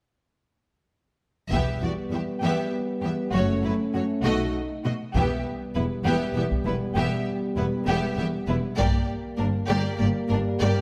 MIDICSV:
0, 0, Header, 1, 8, 480
1, 0, Start_track
1, 0, Tempo, 606061
1, 1200, Time_signature, 6, 3, 24, 8
1, 8562, End_track
2, 0, Start_track
2, 0, Title_t, "Violin section"
2, 0, Program_c, 0, 48
2, 1193, Note_on_c, 0, 76, 44
2, 1420, Note_off_c, 0, 76, 0
2, 1450, Note_on_c, 0, 74, 34
2, 1513, Note_off_c, 0, 74, 0
2, 1688, Note_on_c, 0, 76, 31
2, 1751, Note_off_c, 0, 76, 0
2, 1926, Note_on_c, 0, 76, 40
2, 2146, Note_off_c, 0, 76, 0
2, 2422, Note_on_c, 0, 76, 34
2, 2485, Note_off_c, 0, 76, 0
2, 2657, Note_on_c, 0, 73, 50
2, 2872, Note_off_c, 0, 73, 0
2, 2892, Note_on_c, 0, 71, 38
2, 2956, Note_off_c, 0, 71, 0
2, 3140, Note_on_c, 0, 73, 43
2, 3203, Note_off_c, 0, 73, 0
2, 3362, Note_on_c, 0, 75, 52
2, 3584, Note_off_c, 0, 75, 0
2, 3843, Note_on_c, 0, 75, 39
2, 3906, Note_off_c, 0, 75, 0
2, 4085, Note_on_c, 0, 76, 44
2, 4306, Note_off_c, 0, 76, 0
2, 4554, Note_on_c, 0, 71, 35
2, 4618, Note_off_c, 0, 71, 0
2, 4805, Note_on_c, 0, 76, 44
2, 5026, Note_off_c, 0, 76, 0
2, 5037, Note_on_c, 0, 76, 40
2, 5100, Note_off_c, 0, 76, 0
2, 5287, Note_on_c, 0, 71, 39
2, 5350, Note_off_c, 0, 71, 0
2, 5533, Note_on_c, 0, 76, 52
2, 5750, Note_off_c, 0, 76, 0
2, 5999, Note_on_c, 0, 71, 41
2, 6062, Note_off_c, 0, 71, 0
2, 6246, Note_on_c, 0, 76, 49
2, 6466, Note_off_c, 0, 76, 0
2, 6480, Note_on_c, 0, 76, 44
2, 6544, Note_off_c, 0, 76, 0
2, 6710, Note_on_c, 0, 71, 37
2, 6773, Note_off_c, 0, 71, 0
2, 6952, Note_on_c, 0, 74, 57
2, 7179, Note_off_c, 0, 74, 0
2, 7428, Note_on_c, 0, 70, 41
2, 7491, Note_off_c, 0, 70, 0
2, 7667, Note_on_c, 0, 74, 56
2, 7896, Note_off_c, 0, 74, 0
2, 7913, Note_on_c, 0, 74, 50
2, 7976, Note_off_c, 0, 74, 0
2, 8150, Note_on_c, 0, 70, 45
2, 8213, Note_off_c, 0, 70, 0
2, 8398, Note_on_c, 0, 74, 59
2, 8562, Note_off_c, 0, 74, 0
2, 8562, End_track
3, 0, Start_track
3, 0, Title_t, "Violin section"
3, 0, Program_c, 1, 48
3, 1210, Note_on_c, 1, 67, 38
3, 1428, Note_off_c, 1, 67, 0
3, 1444, Note_on_c, 1, 66, 30
3, 1507, Note_off_c, 1, 66, 0
3, 1698, Note_on_c, 1, 67, 28
3, 1761, Note_off_c, 1, 67, 0
3, 1917, Note_on_c, 1, 67, 42
3, 2142, Note_off_c, 1, 67, 0
3, 2390, Note_on_c, 1, 67, 36
3, 2453, Note_off_c, 1, 67, 0
3, 2626, Note_on_c, 1, 66, 45
3, 2856, Note_off_c, 1, 66, 0
3, 2880, Note_on_c, 1, 64, 39
3, 2944, Note_off_c, 1, 64, 0
3, 3118, Note_on_c, 1, 66, 41
3, 3181, Note_off_c, 1, 66, 0
3, 3348, Note_on_c, 1, 66, 52
3, 3577, Note_off_c, 1, 66, 0
3, 3835, Note_on_c, 1, 66, 41
3, 3899, Note_off_c, 1, 66, 0
3, 4082, Note_on_c, 1, 67, 47
3, 4304, Note_off_c, 1, 67, 0
3, 4558, Note_on_c, 1, 64, 34
3, 4622, Note_off_c, 1, 64, 0
3, 4785, Note_on_c, 1, 67, 56
3, 5015, Note_off_c, 1, 67, 0
3, 5037, Note_on_c, 1, 67, 39
3, 5100, Note_off_c, 1, 67, 0
3, 5273, Note_on_c, 1, 64, 41
3, 5336, Note_off_c, 1, 64, 0
3, 5506, Note_on_c, 1, 67, 48
3, 5736, Note_off_c, 1, 67, 0
3, 5989, Note_on_c, 1, 64, 38
3, 6053, Note_off_c, 1, 64, 0
3, 6237, Note_on_c, 1, 67, 60
3, 6462, Note_off_c, 1, 67, 0
3, 6478, Note_on_c, 1, 67, 45
3, 6542, Note_off_c, 1, 67, 0
3, 6721, Note_on_c, 1, 64, 44
3, 6784, Note_off_c, 1, 64, 0
3, 6953, Note_on_c, 1, 67, 51
3, 7180, Note_off_c, 1, 67, 0
3, 7435, Note_on_c, 1, 62, 43
3, 7499, Note_off_c, 1, 62, 0
3, 7669, Note_on_c, 1, 67, 57
3, 7898, Note_off_c, 1, 67, 0
3, 7915, Note_on_c, 1, 67, 37
3, 7978, Note_off_c, 1, 67, 0
3, 8172, Note_on_c, 1, 62, 50
3, 8235, Note_off_c, 1, 62, 0
3, 8409, Note_on_c, 1, 67, 52
3, 8562, Note_off_c, 1, 67, 0
3, 8562, End_track
4, 0, Start_track
4, 0, Title_t, "Viola section"
4, 0, Program_c, 2, 48
4, 1200, Note_on_c, 2, 59, 43
4, 1423, Note_off_c, 2, 59, 0
4, 1439, Note_on_c, 2, 59, 31
4, 1502, Note_off_c, 2, 59, 0
4, 1675, Note_on_c, 2, 59, 32
4, 1739, Note_off_c, 2, 59, 0
4, 1924, Note_on_c, 2, 59, 43
4, 2146, Note_off_c, 2, 59, 0
4, 2405, Note_on_c, 2, 59, 40
4, 2469, Note_off_c, 2, 59, 0
4, 2647, Note_on_c, 2, 57, 40
4, 2867, Note_off_c, 2, 57, 0
4, 2895, Note_on_c, 2, 57, 40
4, 2958, Note_off_c, 2, 57, 0
4, 3127, Note_on_c, 2, 57, 44
4, 3190, Note_off_c, 2, 57, 0
4, 3367, Note_on_c, 2, 57, 64
4, 3587, Note_off_c, 2, 57, 0
4, 3843, Note_on_c, 2, 57, 37
4, 3907, Note_off_c, 2, 57, 0
4, 4079, Note_on_c, 2, 59, 50
4, 4303, Note_off_c, 2, 59, 0
4, 4560, Note_on_c, 2, 59, 35
4, 4624, Note_off_c, 2, 59, 0
4, 4800, Note_on_c, 2, 59, 53
4, 5023, Note_off_c, 2, 59, 0
4, 5035, Note_on_c, 2, 59, 45
4, 5099, Note_off_c, 2, 59, 0
4, 5270, Note_on_c, 2, 59, 44
4, 5333, Note_off_c, 2, 59, 0
4, 5504, Note_on_c, 2, 59, 43
4, 5735, Note_off_c, 2, 59, 0
4, 5993, Note_on_c, 2, 59, 42
4, 6056, Note_off_c, 2, 59, 0
4, 6235, Note_on_c, 2, 59, 54
4, 6453, Note_off_c, 2, 59, 0
4, 6462, Note_on_c, 2, 59, 43
4, 6525, Note_off_c, 2, 59, 0
4, 6709, Note_on_c, 2, 59, 40
4, 6773, Note_off_c, 2, 59, 0
4, 6934, Note_on_c, 2, 58, 54
4, 7169, Note_off_c, 2, 58, 0
4, 7422, Note_on_c, 2, 58, 45
4, 7486, Note_off_c, 2, 58, 0
4, 7658, Note_on_c, 2, 58, 62
4, 7891, Note_off_c, 2, 58, 0
4, 7907, Note_on_c, 2, 58, 50
4, 7971, Note_off_c, 2, 58, 0
4, 8145, Note_on_c, 2, 58, 48
4, 8209, Note_off_c, 2, 58, 0
4, 8396, Note_on_c, 2, 58, 57
4, 8562, Note_off_c, 2, 58, 0
4, 8562, End_track
5, 0, Start_track
5, 0, Title_t, "French horn section"
5, 0, Program_c, 3, 60
5, 1215, Note_on_c, 3, 55, 35
5, 1217, Note_on_c, 3, 59, 38
5, 2616, Note_off_c, 3, 55, 0
5, 2617, Note_off_c, 3, 59, 0
5, 2636, Note_on_c, 3, 57, 46
5, 2639, Note_on_c, 3, 61, 46
5, 3345, Note_off_c, 3, 61, 0
5, 3364, Note_on_c, 3, 63, 48
5, 3838, Note_off_c, 3, 57, 0
5, 3842, Note_off_c, 3, 63, 0
5, 4065, Note_on_c, 3, 59, 49
5, 4067, Note_on_c, 3, 55, 46
5, 6921, Note_off_c, 3, 59, 0
5, 6922, Note_off_c, 3, 55, 0
5, 6961, Note_on_c, 3, 55, 56
5, 6970, Note_on_c, 3, 58, 54
5, 8562, Note_off_c, 3, 55, 0
5, 8562, Note_off_c, 3, 58, 0
5, 8562, End_track
6, 0, Start_track
6, 0, Title_t, "Cello section"
6, 0, Program_c, 4, 48
6, 1203, Note_on_c, 4, 40, 41
6, 1266, Note_off_c, 4, 40, 0
6, 1445, Note_on_c, 4, 40, 30
6, 1508, Note_off_c, 4, 40, 0
6, 1675, Note_on_c, 4, 40, 30
6, 1739, Note_off_c, 4, 40, 0
6, 1918, Note_on_c, 4, 40, 46
6, 1981, Note_off_c, 4, 40, 0
6, 2398, Note_on_c, 4, 40, 37
6, 2462, Note_off_c, 4, 40, 0
6, 2634, Note_on_c, 4, 42, 53
6, 2698, Note_off_c, 4, 42, 0
6, 2883, Note_on_c, 4, 42, 36
6, 2946, Note_off_c, 4, 42, 0
6, 3123, Note_on_c, 4, 42, 40
6, 3186, Note_off_c, 4, 42, 0
6, 3361, Note_on_c, 4, 47, 62
6, 3424, Note_off_c, 4, 47, 0
6, 3839, Note_on_c, 4, 47, 42
6, 3903, Note_off_c, 4, 47, 0
6, 4079, Note_on_c, 4, 40, 48
6, 4142, Note_off_c, 4, 40, 0
6, 4559, Note_on_c, 4, 40, 31
6, 4622, Note_off_c, 4, 40, 0
6, 4798, Note_on_c, 4, 40, 53
6, 4861, Note_off_c, 4, 40, 0
6, 5039, Note_on_c, 4, 40, 42
6, 5102, Note_off_c, 4, 40, 0
6, 5282, Note_on_c, 4, 40, 35
6, 5346, Note_off_c, 4, 40, 0
6, 5516, Note_on_c, 4, 40, 54
6, 5579, Note_off_c, 4, 40, 0
6, 5998, Note_on_c, 4, 40, 36
6, 6061, Note_off_c, 4, 40, 0
6, 6240, Note_on_c, 4, 40, 58
6, 6304, Note_off_c, 4, 40, 0
6, 6480, Note_on_c, 4, 40, 43
6, 6543, Note_off_c, 4, 40, 0
6, 6717, Note_on_c, 4, 40, 37
6, 6780, Note_off_c, 4, 40, 0
6, 6956, Note_on_c, 4, 43, 61
6, 7020, Note_off_c, 4, 43, 0
6, 7442, Note_on_c, 4, 43, 41
6, 7505, Note_off_c, 4, 43, 0
6, 7677, Note_on_c, 4, 43, 60
6, 7741, Note_off_c, 4, 43, 0
6, 7919, Note_on_c, 4, 43, 45
6, 7983, Note_off_c, 4, 43, 0
6, 8157, Note_on_c, 4, 43, 47
6, 8221, Note_off_c, 4, 43, 0
6, 8397, Note_on_c, 4, 43, 61
6, 8460, Note_off_c, 4, 43, 0
6, 8562, End_track
7, 0, Start_track
7, 0, Title_t, "Double bass section"
7, 0, Program_c, 5, 48
7, 1202, Note_on_c, 5, 28, 41
7, 1424, Note_off_c, 5, 28, 0
7, 2646, Note_on_c, 5, 30, 51
7, 2866, Note_off_c, 5, 30, 0
7, 3361, Note_on_c, 5, 35, 54
7, 3584, Note_off_c, 5, 35, 0
7, 4080, Note_on_c, 5, 28, 48
7, 4144, Note_off_c, 5, 28, 0
7, 4562, Note_on_c, 5, 28, 33
7, 4625, Note_off_c, 5, 28, 0
7, 4794, Note_on_c, 5, 28, 47
7, 4857, Note_off_c, 5, 28, 0
7, 5035, Note_on_c, 5, 28, 35
7, 5099, Note_off_c, 5, 28, 0
7, 5278, Note_on_c, 5, 28, 42
7, 5342, Note_off_c, 5, 28, 0
7, 5514, Note_on_c, 5, 28, 47
7, 5577, Note_off_c, 5, 28, 0
7, 5999, Note_on_c, 5, 28, 38
7, 6062, Note_off_c, 5, 28, 0
7, 6248, Note_on_c, 5, 28, 56
7, 6312, Note_off_c, 5, 28, 0
7, 6479, Note_on_c, 5, 28, 38
7, 6542, Note_off_c, 5, 28, 0
7, 6718, Note_on_c, 5, 28, 41
7, 6782, Note_off_c, 5, 28, 0
7, 6962, Note_on_c, 5, 31, 55
7, 7026, Note_off_c, 5, 31, 0
7, 7445, Note_on_c, 5, 31, 39
7, 7509, Note_off_c, 5, 31, 0
7, 7684, Note_on_c, 5, 31, 59
7, 7747, Note_off_c, 5, 31, 0
7, 7932, Note_on_c, 5, 31, 42
7, 7996, Note_off_c, 5, 31, 0
7, 8176, Note_on_c, 5, 31, 47
7, 8239, Note_off_c, 5, 31, 0
7, 8413, Note_on_c, 5, 31, 60
7, 8477, Note_off_c, 5, 31, 0
7, 8562, End_track
8, 0, Start_track
8, 0, Title_t, "Taiko and cinematic ensemble drums"
8, 1202, Note_on_c, 9, 41, 39
8, 1281, Note_off_c, 9, 41, 0
8, 4074, Note_on_c, 9, 41, 48
8, 4153, Note_off_c, 9, 41, 0
8, 5158, Note_on_c, 9, 41, 28
8, 5237, Note_off_c, 9, 41, 0
8, 6964, Note_on_c, 9, 41, 56
8, 7043, Note_off_c, 9, 41, 0
8, 8562, End_track
0, 0, End_of_file